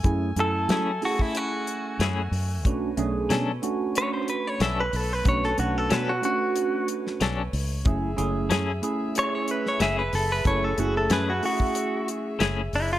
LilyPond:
<<
  \new Staff \with { instrumentName = "Horn section" } { \time 4/4 \key fis \minor \tempo 4 = 92 <a e'' gis''>1 | <b' cis''>1~ | <b' cis''>1 | <gis' e''>1~ |
<gis' e''>1 | }
  \new Staff \with { instrumentName = "Clean electric guitar" } { \time 4/4 \key fis \minor r8 a'4 fis'16 e'16 fis'2~ | fis'4 r4 cis''16 bis'16 b'16 cis''16 e''16 b'16 a'16 b'16 | cis''16 a'16 fis'16 a'16 b'16 fis'16 fis'4 r4. | r2 cis''16 cis''16 b'16 cis''16 e''16 b'16 a'16 b'16 |
cis''16 a'16 fis'16 a'16 b'16 fis'16 fis'4 r4 e'16 eis'16 | }
  \new Staff \with { instrumentName = "Clean electric guitar" } { \time 4/4 \key fis \minor r4 <a cis' e' gis'>8 r4. <a cis' e' gis'>8 r8 | r4 <fis cis' d' a'>8 r4. <fis cis' d' a'>8 r8 | r4 <fis cis' d' a'>8 r4. <fis cis' d' a'>8 r8 | r4 <a cis' e' gis'>8 r4. <a cis' e' gis'>8 r8 |
r4 <a cis' e' gis'>8 r4. <a cis' e' gis'>8 r8 | }
  \new Staff \with { instrumentName = "Tine electric piano" } { \time 4/4 \key fis \minor <a cis' e' gis'>8 <a cis' e' a'>8. r16 <a cis' e' gis'>4. r4 | <a cis' d' fis'>8 <a cis' d' gis'>8. r16 <a cis' d' fis'>4. r4 | <a cis' d' fis'>8 <a cis' d' fis'>8. r16 <a cis' d' fis'>4. r4 | <a cis' e' gis'>8 <a cis' e' gis'>8. r16 <a cis' e' gis'>4. r4 |
<a cis' e' a'>8 <a cis' e' gis'>8. r16 <a cis' e' gis'>4. r4 | }
  \new Staff \with { instrumentName = "Fingered electric bass" } { \clef bass \time 4/4 \key fis \minor fis,8 fis,8 fis8 r4. fis,8 fis,8 | b,,8 b,,8 b,8 r4. b,,8 b,,8 | b,,8 b,,8 b,8 r4. b,,8 cis,8 | fis,,8 fis,,8 fis,8 r4. fis,,8 fis,,8 |
fis,,8 fis,,8 fis,8 r4. fis,,8 fis,,8 | }
  \new DrumStaff \with { instrumentName = "Drums" } \drummode { \time 4/4 <hh bd>8 hh8 <hh sn>8 hho16 bd16 hh8 hh8 <hh sn>8 hho8 | <hh bd>8 hh8 <hh sn>8 hh8 hh8 hh8 <hh sn>8 hho8 | <hh bd>16 sn16 hh8 <hh sn>8 hh8 hh8 hh16 sn16 <hh sn>8 hho8 | <hh bd>8 hh8 <hh sn>8 hh8 hh8 hh16 sn16 <hh sn>8 <hho sn>8 |
<hh bd>8 hh8 <hh sn>8 hho16 bd16 hh8 hh8 <hh sn>8 hho8 | }
>>